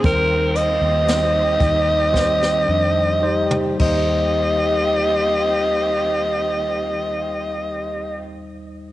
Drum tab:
CC |--------------x-|----------------|
HH |x-x-x-x---------|----------------|
SD |----o---oo------|----------------|
T2 |-------------o--|----------------|
BD |o-----o-o-----o-|----------------|